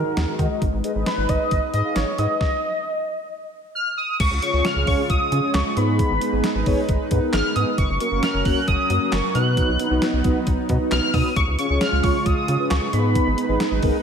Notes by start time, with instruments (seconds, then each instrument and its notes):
Already playing: analog synth pad D#3 G#3 F#4, analog synth lead A#4
0.06 analog polysynth D#4 F#4 A#4 F#5
0.17 analog synth bass D#2, snare, closed hi-hat
0.39 analog synth bass D#3, analog polysynth D#4 F#4 A#4 D#5, kick, closed hi-hat
0.50 analog polysynth D#4 F#4 A#4 D#5
0.62 analog synth bass G#1, analog synth pad D#4 B4, kick, closed hi-hat
0.73 analog synth bass G#1
0.84 analog polysynth D#4 G#4 B4 D#5, closed hi-hat
0.95 analog synth bass G#1, analog polysynth D#4 G#4 B4 D#5
1.06 analog synth lead B4, snare, closed hi-hat
1.18 analog synth bass G#1
1.29 analog synth bass G#1, analog polysynth D#4 G#4 B4 D#5, analog synth lead D#5, kick, closed hi-hat
1.51 analog synth bass G#1, kick, closed hi-hat
1.73 analog synth bass G#2, analog polysynth D#4 G#4 B4 D#5, analog synth lead D#5, closed hi-hat
1.85 analog polysynth D#4 G#4 B4 F5
1.96 analog synth bass G#1, analog synth lead C#5, snare, closed hi-hat
2.18 analog synth bass G#2, analog polysynth D#4 G#4 B4 F#5, analog synth lead D#5, closed hi-hat
2.30 analog polysynth D#4 G#4 B4 D#5
2.41 kick, snare
3.75 analog synth lead F6
3.97 analog synth lead D#6
4.20 analog synth bass C#2, analog synth pad C#3 G#3 F4, analog synth lead C#6, kick, closed hi-hat, crash
4.31 analog synth bass C#2
4.42 analog polysynth C#4 F4 G#4 C#5, analog synth lead C#6, closed hi-hat
4.53 analog synth bass C#2, analog polysynth C#4 F4 G#4 C#5
4.65 analog synth lead F6, snare, closed hi-hat
4.76 analog synth bass C#2
4.87 analog synth bass C#2, analog polysynth C#4 F4 G#4 C#5, analog synth lead C#6, kick, open hi-hat
5.10 analog synth bass C#2, analog synth lead D#6, kick, closed hi-hat
5.32 analog synth bass C#3, analog polysynth C#4 F4 G#4 C#5, closed hi-hat
5.43 analog polysynth C#4 F4 G#4 C#5
5.54 analog synth bass C#2, analog synth lead C#6, snare, clap, closed hi-hat
5.76 analog synth bass G#2, analog polysynth B3 D#4 G#4 B4, analog synth pad D#4 B4, analog synth lead B5, closed hi-hat
5.99 kick, closed hi-hat
6.10 analog synth bass G#1
6.21 analog polysynth B3 D#4 G#4 B4, closed hi-hat
6.32 analog synth bass G#1, analog polysynth B3 D#4 G#4 B4
6.44 snare, closed hi-hat
6.55 analog synth bass G#1
6.66 analog synth bass G#1, analog polysynth B3 D#4 G#4 C#5, kick, open hi-hat
6.89 analog synth bass G#1, kick, closed hi-hat
7.11 analog synth bass G#2, analog polysynth B3 D#4 G#4 B4, kick, closed hi-hat
7.22 analog polysynth B3 D#4 G#4 A#4
7.33 analog synth bass G#1, analog synth lead F6, snare, clap, closed hi-hat
7.56 analog synth bass G#2, analog polysynth B3 D#4 G#4 B4, analog synth lead D#6, closed hi-hat
7.78 analog synth bass F#1, analog synth pad F#3 C#4 A#4, analog synth lead C#6, kick, closed hi-hat
7.89 analog synth bass F#1
8.00 analog polysynth A#3 C#4 F#4 A#4, analog synth lead C#6, closed hi-hat
8.12 analog synth bass F#1, analog polysynth A#3 C#4 F#4 A#4
8.23 analog synth lead F6, snare, closed hi-hat
8.34 analog synth bass F#1
8.45 analog synth bass F#1, analog polysynth A#3 C#4 F#4 A#4, analog synth lead F#6, kick, open hi-hat
8.68 analog synth bass F#1, analog synth lead D#6, kick, closed hi-hat
8.90 analog synth bass F#2, analog polysynth A#3 C#4 F#4 A#4, closed hi-hat
9.01 analog polysynth A#3 C#4 F#4 A#4
9.12 analog synth bass F#1, analog synth lead C#6, snare, clap, closed hi-hat
9.35 analog synth bass B2, analog polysynth B3 D#4 F#4 B4, analog synth pad B3 D#4, analog synth lead F#6, closed hi-hat
9.57 kick, closed hi-hat
9.68 analog synth bass B1
9.79 analog polysynth B3 D#4 F#4 B4, closed hi-hat
9.91 analog synth bass B1, analog polysynth B3 D#4 F#4 B4
10.02 snare, closed hi-hat
10.13 analog synth bass B1
10.24 analog synth bass B1, analog polysynth B3 D#4 F#4 B4, kick, closed hi-hat
10.47 analog synth bass B1, kick, closed hi-hat
10.69 analog synth bass B2, analog polysynth B3 D#4 F#4 B4, kick, closed hi-hat
10.80 analog polysynth B3 D#4 F#4 B4
10.91 analog synth bass B1, analog synth lead F6, snare, clap, closed hi-hat
11.14 analog synth bass B2, analog polysynth B3 D#4 F#4 B4, analog synth lead D#6, kick, open hi-hat
11.36 analog synth bass C#2, analog synth pad C#3 G#3 F4, analog synth lead C#6, kick, closed hi-hat
11.48 analog synth bass C#2
11.59 analog polysynth C#4 F4 G#4 C#5, analog synth lead C#6, closed hi-hat
11.70 analog synth bass C#2, analog polysynth C#4 F4 G#4 C#5
11.81 analog synth lead F6, snare, closed hi-hat
11.92 analog synth bass C#2
12.03 analog synth bass C#2, analog polysynth C#4 F4 G#4 C#5, analog synth lead C#6, kick, open hi-hat
12.25 analog synth bass C#2, analog synth lead D#6, kick, closed hi-hat
12.48 analog synth bass C#3, analog polysynth C#4 F4 G#4 C#5, closed hi-hat
12.59 analog polysynth C#4 F4 G#4 B4
12.70 analog synth bass C#2, analog synth lead C#6, snare, clap, closed hi-hat
12.93 analog synth bass G#2, analog polysynth B3 D#4 G#4 B4, analog synth pad D#4 B4, analog synth lead B5, closed hi-hat
13.15 kick, closed hi-hat
13.27 analog synth bass G#1
13.38 analog polysynth B3 D#4 G#4 B4, closed hi-hat
13.49 analog synth bass G#1, analog polysynth B3 D#4 G#4 B4
13.60 snare, closed hi-hat
13.71 analog synth bass G#1
13.83 analog synth bass G#1, analog polysynth B3 D#4 G#4 A#4, kick, open hi-hat